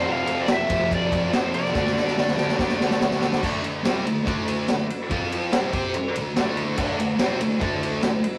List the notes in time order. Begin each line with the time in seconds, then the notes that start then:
0.04 F2 C3
0.09 F3 F5
0.25 C3 F3, ride
0.41 D5
0.47 F2 C3, snare, ride
0.51 F3 E5
0.68 F2 C3 F3, kick, ride
0.88 F2 C3, kick
0.92 F3 D5, ride
1.10 C3 F3, kick, ride
1.30 F2 C3 F3 C5, snare, ride
1.51 C3 F3 D5, ride
1.65 snare
1.71 D3 A3, kick, snare
1.76 D4
1.86 snare
1.94 A3 D4, snare
2.07 snare
2.13 D3 A3
2.17 D4, snare
2.28 snare
2.35 D3 A3 D4, snare
2.49 snare
2.56 D3 A3, kick, snare
2.61 D4
2.69 snare
2.79 D4, snare
2.83 A3
2.91 snare
3.00 D3 A3, snare
3.05 D4
3.11 snare
3.20 D4, snare
3.25 A3
3.32 snare
3.42 D3 A3 D4, kick, crash
3.63 D3 A3, ride
3.83 C3 G3 C4, snare, ride
4.05 D3 A3, ride
4.25 D3 A3 D4, kick, ride
4.48 ride
4.68 D3 A3, snare, ride
4.90 ride
5.10 F3 C4 F4, kick, ride
5.32 ride
5.52 C3 G3 C4, snare, ride
5.72 C4 G4 C5, kick, ride
5.94 muted distorted electric guitar stroke, ride
6.16 D3 A3, ride
6.36 D3 A3 D4, snare, ride
6.57 ride
6.77 D3 A3 D4, kick, crash
6.97 D3 A3, ride
7.18 C3 G3 C4, snare, ride
7.40 D3 A3, ride
7.60 D3 A3 D4, kick, ride
7.83 ride
8.03 D3 A3, snare, ride
8.24 ride